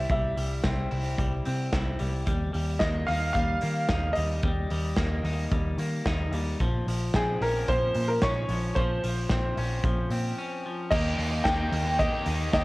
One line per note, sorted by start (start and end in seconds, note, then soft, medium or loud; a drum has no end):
0.00 0.62 C4 medium
0.00 0.90 E4 medium
0.10 0.32 C2 medium
0.10 0.37 G3 medium
0.10 0.88 E5 medium
0.10 kick loud
0.10 closed hi-hat medium
0.37 0.59 C2 medium
0.37 1.18 G3 medium
0.37 open hi-hat medium
0.63 0.86 C2 medium
0.63 1.44 C4 medium
0.63 kick loud
0.63 snare medium
0.63 closed hi-hat medium
0.91 1.14 C2 medium
0.91 1.71 E4 medium
0.91 open hi-hat medium
1.18 1.40 C2 medium
1.18 1.99 G3 soft
1.18 kick medium
1.18 closed hi-hat medium
1.45 1.68 C3 medium
1.45 2.32 C4 medium
1.45 open hi-hat medium
1.73 1.95 C2 medium
1.73 2.32 E4 medium
1.73 kick loud
1.73 snare loud
1.73 closed hi-hat medium
1.99 2.22 C2 medium
1.99 2.26 G3 medium
1.99 open hi-hat medium
2.27 2.49 D#2 medium
2.27 2.52 G3 medium
2.27 kick loud
2.27 closed hi-hat medium
2.53 2.76 D#2 medium
2.53 3.34 G3 medium
2.53 open hi-hat medium
2.79 3.03 D#2 medium
2.79 3.62 A#3 medium
2.79 3.05 D#5 medium
2.79 kick loud
2.79 snare medium
2.79 closed hi-hat medium
3.07 3.31 D#2 medium
3.07 3.88 D#4 medium
3.07 3.32 F5 loud
3.07 open hi-hat medium
3.33 3.57 D#2 medium
3.33 4.15 G3 medium
3.33 4.18 F5 loud
3.33 kick loud
3.33 closed hi-hat medium
3.61 3.85 D#3 medium
3.61 4.98 A#3 medium
3.61 open hi-hat medium
3.89 4.11 D#2 medium
3.89 5.24 D#4 medium
3.89 kick loud
3.89 snare loud
3.89 closed hi-hat medium
4.13 4.43 G3 medium
4.13 5.73 D#5 medium
4.13 open hi-hat medium
4.17 4.39 D#2 medium
4.43 4.66 D#2 loud
4.43 4.70 G3 medium
4.43 kick loud
4.43 closed hi-hat medium
4.70 4.93 D#2 medium
4.70 5.51 G3 medium
4.70 open hi-hat medium
4.97 5.20 D#2 medium
4.97 5.79 A#3 medium
4.97 kick loud
4.97 snare loud
4.97 closed hi-hat medium
5.24 5.46 D#2 medium
5.24 6.06 D#4 medium
5.24 open hi-hat medium
5.52 5.74 D#2 loud
5.52 6.33 G3 soft
5.52 kick loud
5.52 closed hi-hat medium
5.78 6.00 D#3 medium
5.78 7.15 A#3 medium
5.78 open hi-hat medium
6.06 6.28 D#2 loud
6.06 6.66 D#4 medium
6.06 kick loud
6.06 snare loud
6.06 closed hi-hat medium
6.31 6.54 D#2 medium
6.31 6.60 G3 medium
6.31 open hi-hat medium
6.60 6.82 A#1 medium
6.60 6.87 F3 medium
6.60 kick loud
6.60 closed hi-hat medium
6.87 7.09 A#1 medium
6.87 7.69 F3 medium
6.87 open hi-hat medium
7.14 7.36 A#1 medium
7.14 7.95 C4 medium
7.14 7.40 G#4 medium
7.14 kick loud
7.14 snare medium
7.14 closed hi-hat medium
7.41 7.63 A#1 medium
7.41 8.22 C#4 medium
7.41 7.67 A#4 medium
7.41 open hi-hat medium
7.68 7.90 A#1 medium
7.68 8.49 F3 medium
7.68 8.10 C5 medium
7.68 kick loud
7.68 closed hi-hat medium
7.94 8.17 A#2 medium
7.94 open hi-hat medium
8.08 8.22 A#4 medium
8.22 8.44 A#1 medium
8.22 9.57 C#4 medium
8.22 8.78 C#5 loud
8.22 kick loud
8.22 snare loud
8.22 closed hi-hat medium
8.49 8.71 A#1 loud
8.49 8.76 F3 medium
8.49 open hi-hat medium
8.75 8.98 A#1 medium
8.75 9.03 F3 medium
8.75 10.33 C5 medium
8.75 kick loud
8.75 closed hi-hat medium
9.04 9.25 A#1 medium
9.04 9.84 F3 medium
9.04 open hi-hat medium
9.29 9.52 A#1 medium
9.29 10.10 C4 medium
9.29 kick loud
9.29 snare medium
9.57 9.79 A#1 medium
9.57 10.37 C#4 medium
9.57 open hi-hat medium
9.84 10.06 A#1 medium
9.84 10.65 F3 medium
9.84 kick loud
9.84 closed hi-hat medium
10.10 10.32 A#2 medium
10.10 10.92 C4 medium
10.10 open hi-hat medium
10.38 10.97 C#4 medium
10.66 10.98 F3 medium
10.91 11.14 D#2 loud
10.91 11.32 D#3 medium
10.91 11.31 A#3 medium
10.91 11.18 A#3 medium
10.91 11.31 D#4 medium
10.91 11.99 G4 medium
10.91 11.30 G4 medium
10.91 11.41 D#5 loud
10.91 kick loud
10.91 crash loud
11.18 11.40 D#2 loud
11.18 11.72 A#3 medium
11.18 open hi-hat medium
11.31 11.86 D#3 medium
11.31 11.85 A#3 medium
11.31 11.85 D#4 medium
11.31 11.84 G4 medium
11.44 11.67 D#2 loud
11.44 12.26 D#4 medium
11.44 11.95 G5 loud
11.44 kick loud
11.44 snare loud
11.44 hi-hat pedal medium
11.44 ride medium
11.72 12.05 D#2 medium
11.72 12.64 A#3 medium
11.72 open hi-hat medium
11.85 12.13 D#3 medium
11.85 12.13 A#3 medium
11.85 12.13 D#4 medium
11.85 12.11 G4 medium
11.99 12.53 G4 medium
11.99 12.49 D#5 loud
11.99 kick loud
11.99 hi-hat pedal medium
11.99 ride medium
12.12 12.64 A#3 soft
12.12 12.64 D#4 soft
12.12 12.64 G4 soft
12.26 12.48 D#2 medium
12.26 12.64 D#4 medium
12.26 open hi-hat medium
12.53 12.64 D#2 medium
12.53 12.64 G4 medium
12.53 12.64 D#5 medium
12.53 kick loud
12.53 snare loud
12.53 hi-hat pedal medium
12.53 ride medium